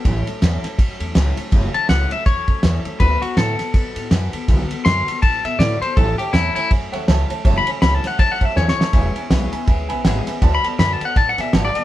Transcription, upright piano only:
X:1
M:4/4
L:1/8
Q:"Swing" 1/4=162
K:A
V:1 name="Upright piano"
z8 | z8 | z8 | z8 |
[cea] [cea] [cea] [ceg] [ceg] [cef] [cea] [cea] | [cea] [ceg] [ceg] [cea] [cea] [cea] [ceg] [cea] | [Beg] [Beg] [Bef] [Beg] [Beg] [Beg] [Bef] [Beg] | [dfa] [dfa] [df] [dfa] [dfa] [dfg] [dfa] [fa] |]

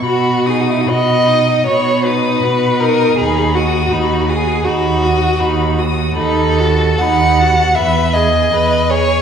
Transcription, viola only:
X:1
M:4/4
L:1/8
Q:1/4=79
K:B
V:1 name="Viola"
F D F D F D F D | D F D F D F D F | D F D F B G B G |]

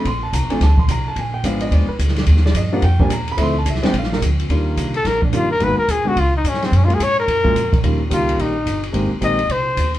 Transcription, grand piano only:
X:1
M:4/4
L:1/8
Q:"Swing" 1/4=216
K:Bbmix
V:1 name="Grand piano"
c' =a b _a =a c' b a | a g f e d _c z2 | z d e ^f g a b =b | c' =a =e g f B z2 |
[K:Eb] z8 | z8 | z8 | z8 |
z8 |]
V:2 name="Grand piano"
z3 [F,=A,CD] z4 | z2 [F,A,_CD]3 z3 | z3 [F,G,B,D] z [F,G,B,D] z2 | [F,=A,C=E] z2 [F,_A,CD] z4 |
[K:Eb] [E,G,B,DF]3 z3 [E,G,B,DF] z | [E,A,B,_C_G] z2 [D,A,C_DA] z4 | z [_G,A,B,_DF] z3 [G,A,B,DF] z2 | [E,G,B,_DF] z [E,G,B,DG]3 z3 |
[E,A,B,CG] z [E,A,B,CG] z4 z |]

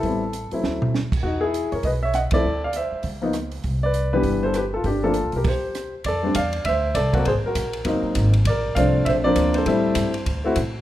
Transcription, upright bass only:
X:1
M:4/4
L:1/8
Q:"Swing" 1/4=200
K:C
V:1 name="Upright bass" clef=bass
A,,,3 z D,,3 z | E,,3 F,, B,,,3 z | D,,3 z _D,,4 | C,,4 G,,,4 |
G,,,2- (3G,,, _B,,, =B,,, z4 | [K:F] F,,2 E,,2 D,,2 C,,2 | _A,,, z B,,,2 _G,,, z A,,,2 | B,,,2 C,,2 B,,,2 D,,2 |
A,,2 G,,2 D,,2 A,,2 |]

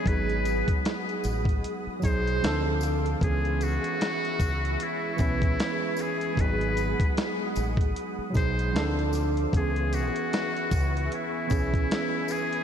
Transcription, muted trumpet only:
X:1
M:4/4
L:1/8
Q:"Swing 16ths" 1/4=76
K:C#m
V:1 name="Muted trumpet"
B2 z3 ^B2 z | G F3 E3 G | B2 z3 ^B2 z | G F3 E3 G |]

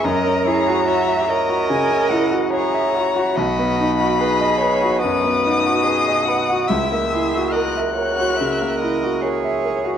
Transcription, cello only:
X:1
M:4/4
L:1/8
Q:1/4=72
K:F#mix
V:1 name="Cello"
A G F A3 G F | F2 G2 F2 G F | E G A F A2 G2 |]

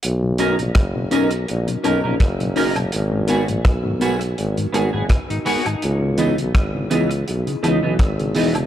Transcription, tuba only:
X:1
M:4/4
L:1/16
Q:"Swing 16ths" 1/4=83
K:B
V:1 name="Tuba" clef=bass
B,,,3 A,,, F,,,2 B,,,2 A,,, z B,,, A,,, F,,,2 F,,,2 | G,,,3 A,,, B,,,2 B,,,2 G,,, z G,,, F,,, z4 | C,,3 B,,, G,,,2 C,,2 B,,, z C,, B,,, G,,,2 E,,,2 |]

